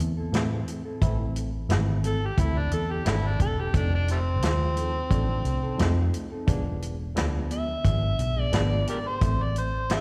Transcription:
Already playing: reed electric piano E3 A3 C4 E4
0.00 fingered electric bass E2, muted clean electric guitar stroke, closed hi-hat
0.17 clean electric guitar C4 E4 A4
0.32 fingered electric bass A2, clean electric guitar E3 C4 E4 A4, reed electric piano E3 A3 C4 E4, snare, closed hi-hat
0.52 muted clean electric guitar stroke
0.67 muted clean electric guitar stroke, closed hi-hat
0.85 clean electric guitar C4 E4 A4
1.01 fingered electric bass A1, clean electric guitar E3 C4 E4 A4, reed electric piano E3 A3 C4 E4, kick, closed hi-hat
1.20 muted clean electric guitar stroke
1.35 muted clean electric guitar stroke, closed hi-hat
1.69 fingered electric bass G#1, reed electric piano E3 A3 C4 E4, snare, closed hi-hat
2.03 clean electric guitar E3 C4 E4 A4, harmonica A4, closed hi-hat
2.22 harmonica G4, muted clean electric guitar stroke
2.37 fingered electric bass D2, clean electric guitar E3 C4 E4 A4, reed electric piano E3 A3 C4 E4, harmonica E4, kick, closed hi-hat
2.56 harmonica D4, muted clean electric guitar stroke
2.71 fingered electric bass E2, harmonica A4, muted clean electric guitar stroke, closed hi-hat
2.90 clean electric guitar C4 E4 A4, harmonica G4
3.05 fingered electric bass G#1, clean electric guitar E3 C4 E4 A4, reed electric piano E3 A3 C4 D4, harmonica E4, snare, closed hi-hat
3.24 harmonica D4, muted clean electric guitar stroke
3.40 fingered electric bass E1, harmonica A4, muted clean electric guitar stroke, kick, closed hi-hat
3.58 clean electric guitar C4 E4 A4, harmonica G4
3.73 fingered electric bass F1, clean electric guitar F3 C4 D#4 A4, reed electric piano F3 A3 C4 D#4, harmonica D4, kick, closed hi-hat
3.92 harmonica D4, muted clean electric guitar stroke
4.08 harmonica G3 A3 C4, muted clean electric guitar stroke, closed hi-hat
4.42 fingered electric bass D#2, reed electric piano F3 A3 C4 F4, muted clean electric guitar stroke, snare, closed hi-hat
4.75 clean electric guitar F3 C4 D#4 A4, closed hi-hat
4.95 muted clean electric guitar stroke
5.10 fingered electric bass A1, reed electric piano F3 A3 C4 D4, clean electric guitar F3 C4 D#4 A4, kick, closed hi-hat
5.29 muted clean electric guitar stroke
5.45 fingered electric bass C2, muted clean electric guitar stroke, closed hi-hat
5.63 clean electric guitar C4 D#4 A4
5.78 fingered electric bass F2, clean electric guitar F3 C4 D#4 A4, reed electric piano F3 A3 C4 D#4, snare, closed hi-hat
5.98 muted clean electric guitar stroke
6.13 muted clean electric guitar stroke, closed hi-hat
6.32 clean electric guitar C4 D#4 A4
6.47 fingered electric bass E1, reed electric piano F3 G#3 B3 D4, clean electric guitar F3 B3 D4 G#4, kick, closed hi-hat
6.66 muted clean electric guitar stroke
6.82 muted clean electric guitar stroke, closed hi-hat
7.15 fingered electric bass D2, reed electric piano F3 G#3 B3 D4, muted clean electric guitar stroke, snare, closed hi-hat
7.49 clean electric guitar F3 B3 D4 G#4, harmonica E5, closed hi-hat
7.68 muted clean electric guitar stroke
7.84 fingered electric bass G#1, clean electric guitar F3 B3 D4 G#4, reed electric piano F3 G#3 B3 D4, kick, closed hi-hat
8.03 muted clean electric guitar stroke
8.18 fingered electric bass B1, muted clean electric guitar stroke, closed hi-hat
8.36 clean electric guitar B3 D4 G#4
8.41 harmonica D5
8.52 fingered electric bass G#1, clean electric guitar F3 B3 D4 G#4, reed electric piano F3 G#3 B3 D4, snare, closed hi-hat
8.71 muted clean electric guitar stroke
8.87 harmonica G4 A#4 D5, muted clean electric guitar stroke, closed hi-hat
9.05 clean electric guitar B3 D4 G#4, harmonica C5
9.21 fingered electric bass A1, clean electric guitar E3 A3 C4, reed electric piano E3 A3 C4 E4, kick, closed hi-hat
9.40 harmonica D5, muted clean electric guitar stroke
9.56 harmonica C5, muted clean electric guitar stroke, closed hi-hat
9.89 fingered electric bass G#1, reed electric piano E3 A3 C4 D4, harmonica E5, muted clean electric guitar stroke, snare, closed hi-hat

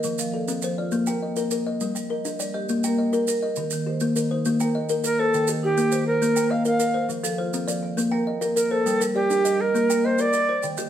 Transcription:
Already playing: kalimba A#4 D#5
0.03 kalimba F3, maracas
0.18 marimba F3, maracas
0.34 kalimba A4, marimba D5
0.48 kalimba C4, maracas
0.62 marimba F3, kalimba C5, maracas
0.78 marimba F4, kalimba D5
0.91 kalimba A#3, maracas
1.06 marimba A#3 A#4, kalimba G5, maracas
1.22 kalimba D#5
1.36 marimba A#4, kalimba A#4, maracas
1.51 marimba A#4, kalimba A#4, maracas
1.67 kalimba D#5
1.81 kalimba G3, maracas
1.95 marimba G3, maracas
2.10 kalimba A#4, marimba D#5
2.25 kalimba D4, maracas
2.40 marimba G3, kalimba D5, maracas
2.54 marimba G4, kalimba D#5
2.69 kalimba A#3, maracas
2.84 marimba A#3 A#4, kalimba G5, maracas
2.98 kalimba D#5
3.13 kalimba A#4, marimba A#4, maracas
3.27 kalimba A#4, marimba A#4, maracas
3.43 kalimba D#5
3.56 kalimba D#3, maracas
3.70 marimba D#3, maracas
3.86 kalimba G4, marimba C5
4.00 kalimba A#3, maracas
4.16 marimba D#3, kalimba A#4, maracas
4.31 marimba D#4, kalimba C5
4.45 kalimba A#3, maracas
4.60 marimba A#3 A#4, kalimba G5, maracas
4.75 kalimba D#5
4.89 kalimba A#4, maracas
5.04 kalimba A#4, marimba A#4, native american-style wooden flute A#4, maracas
5.19 native american-style wooden flute A4, kalimba C5
5.34 kalimba D#3, marimba G5, maracas
5.47 marimba D#3, kalimba G4, maracas
5.63 marimba D#4, native american-style wooden flute G4
5.77 kalimba A#3, maracas
5.92 marimba D#3, kalimba C5, maracas
6.06 native american-style wooden flute A#4, marimba C5
6.22 kalimba A#3, maracas
6.36 marimba A#3 A#4, kalimba G5, maracas
6.51 kalimba D#5, native american-style wooden flute F5
6.65 marimba A#4, kalimba A#4, native american-style wooden flute F5, maracas
6.80 kalimba A#4, marimba A#4, maracas
6.94 kalimba C5
7.09 kalimba F3, maracas
7.24 marimba F3, kalimba A4, maracas
7.38 marimba F4, kalimba C5
7.54 kalimba C4, maracas
7.68 marimba F3, kalimba D5, maracas
7.83 marimba D5
7.97 kalimba A#3, maracas
8.11 marimba A#3 A#4, kalimba G5
8.27 kalimba D#5
8.41 kalimba A#4, marimba A#4, maracas
8.56 native american-style wooden flute A#4, kalimba A#4, marimba A#4, maracas
8.71 native american-style wooden flute A4, kalimba C5
8.86 kalimba G3, marimba G5, maracas
9.00 marimba G3, kalimba A#4, maracas
9.15 native american-style wooden flute G4, marimba G4, kalimba D5
9.30 kalimba D4, maracas
9.45 marimba G3, kalimba D#5, maracas
9.60 native american-style wooden flute A#4, marimba D#5
9.75 kalimba A#3, maracas
9.90 marimba A#3 A#4, kalimba G5, maracas
10.05 native american-style wooden flute C5, kalimba D#5
10.18 marimba A#4, kalimba A#4, native american-style wooden flute D5, maracas
10.33 marimba A#4, kalimba A#4, maracas
10.49 kalimba C5
10.63 kalimba D#3, marimba G5, maracas
10.77 marimba D#3, kalimba G4, maracas

